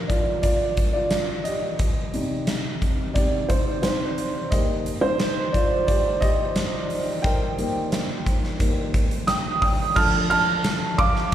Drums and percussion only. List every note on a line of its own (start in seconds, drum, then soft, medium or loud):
0.10 kick medium
0.10 closed hi-hat medium
0.43 kick medium
0.43 closed hi-hat medium
0.77 kick medium
0.77 closed hi-hat medium
1.11 snare medium
1.11 closed hi-hat medium
1.45 closed hi-hat medium
1.79 kick medium
1.79 closed hi-hat medium
2.14 closed hi-hat medium
2.47 snare loud
2.47 closed hi-hat medium
2.82 kick medium
2.82 closed hi-hat medium
3.16 kick medium
3.16 closed hi-hat medium
3.50 kick medium
3.50 closed hi-hat medium
3.83 snare medium
3.83 closed hi-hat medium
4.18 closed hi-hat medium
4.52 kick medium
4.52 closed hi-hat medium
4.86 closed hi-hat medium
5.20 snare loud
5.20 closed hi-hat medium
5.54 kick medium
5.54 closed hi-hat medium
5.88 kick medium
5.88 closed hi-hat medium
6.22 kick medium
6.22 closed hi-hat medium
6.56 snare loud
6.56 closed hi-hat medium
6.90 open hi-hat medium
7.24 kick loud
7.24 closed hi-hat medium
7.59 closed hi-hat medium
7.92 snare loud
7.92 closed hi-hat medium
8.26 kick medium
8.26 closed hi-hat medium
8.44 snare soft
8.60 kick medium
8.60 closed hi-hat medium
8.94 kick medium
8.94 closed hi-hat medium
9.11 closed hi-hat medium
9.28 snare loud
9.28 closed hi-hat medium
9.62 kick medium
9.62 open hi-hat medium
9.96 kick loud
9.96 crash loud
10.31 ride medium
10.64 snare loud
10.64 ride medium
10.99 kick loud
10.99 ride medium
11.16 snare soft